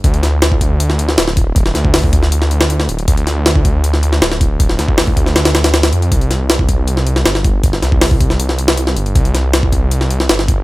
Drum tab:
HH |xxx-x-x-x-x-x-x-|x-x-o-x-x-x-x-xx|xxx-x-x-x-x-x-x-|x-x-o-x-xxxxxxxx|
SD |--o-o----o-ooo--|-oo-o--o-o-o-o--|--o-o----o-ooo--|-oo-o--ooooooo--|
BD |o----oo-------o-|o--o-oo---------|o----oo-------o-|o--o-oo---------|

HH |xxx-x-x-x-x-x-x-|x-x-o-x-x-x-x-xx|xxx-x-x-x-x-x-x-|
SD |--o-o----o-ooo--|-oo-o--o-o-o-o--|--o-o----o-ooo--|
BD |o----oo-------o-|o--o-oo---------|o----oo-------o-|